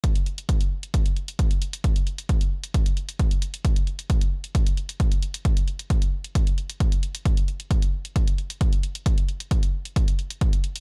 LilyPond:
\new DrumStaff \with { instrumentName = "Drums" } \drummode { \time 4/4 \tempo 4 = 133 <hh bd>16 hh16 hh16 hh16 <hh bd>16 hh8 hh16 <hh bd>16 hh16 hh16 hh16 <hh bd>16 hh16 hh16 hh16 | <hh bd>16 hh16 hh16 hh16 <hh bd>16 hh8 hh16 <hh bd>16 hh16 hh16 hh16 <hh bd>16 hh16 hh16 hh16 | <hh bd>16 hh16 hh16 hh16 <hh bd>16 hh8 hh16 <hh bd>16 hh16 hh16 hh16 <hh bd>16 hh16 hh16 hh16 | <hh bd>16 hh16 hh16 hh16 <hh bd>16 hh8 hh16 <hh bd>16 hh16 hh16 hh16 <hh bd>16 hh16 hh16 hh16 |
<hh bd>16 hh16 hh16 hh16 <hh bd>16 hh8 hh16 <hh bd>16 hh16 hh16 hh16 <hh bd>16 hh16 hh16 hh16 | <hh bd>16 hh16 hh16 hh16 <hh bd>16 hh8 hh16 <hh bd>16 hh16 hh16 hh16 <hh bd>16 hh16 hh16 hh16 | }